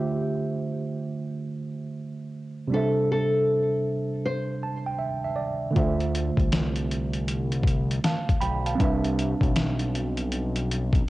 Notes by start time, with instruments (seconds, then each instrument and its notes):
Already playing: tine electric piano D3 A3 F4 C5 E5, nylon-string guitar G4
2.68 tine electric piano C3 G3
2.72 tine electric piano D4 C5, nylon-string guitar A4
2.77 tine electric piano E5
3.12 nylon-string guitar A4
4.25 nylon-string guitar C5
4.63 tine electric piano A5
4.86 tine electric piano G5
4.98 tine electric piano E5
5.24 tine electric piano E5
5.36 tine electric piano D5
5.71 tine electric piano D3 A3
5.75 analog synth bass D2, tine electric piano F4 C5, kick, closed hi-hat
5.79 tine electric piano E5
6.00 closed hi-hat
6.15 closed hi-hat
6.37 analog synth bass C2, kick, closed hi-hat
6.52 snare, closed hi-hat
6.76 closed hi-hat
6.91 closed hi-hat
7.13 closed hi-hat
7.28 closed hi-hat
7.52 closed hi-hat
7.63 kick
7.68 closed hi-hat
7.91 closed hi-hat
8.04 tine electric piano F5 A5, snare, closed hi-hat
8.29 kick, closed hi-hat
8.41 analog synth bass B1, tine electric piano G5 B5, closed hi-hat
8.66 tine electric piano F5 A5, closed hi-hat
8.75 tine electric piano G3 C4
8.79 analog synth bass C2, tine electric piano D4 B4, kick, closed hi-hat
8.84 tine electric piano E5
9.04 closed hi-hat
9.19 closed hi-hat
9.41 analog synth bass B1, kick, closed hi-hat
9.56 snare, closed hi-hat
9.79 closed hi-hat
9.95 closed hi-hat
10.17 closed hi-hat
10.32 closed hi-hat
10.56 closed hi-hat
10.71 closed hi-hat
10.93 kick, closed hi-hat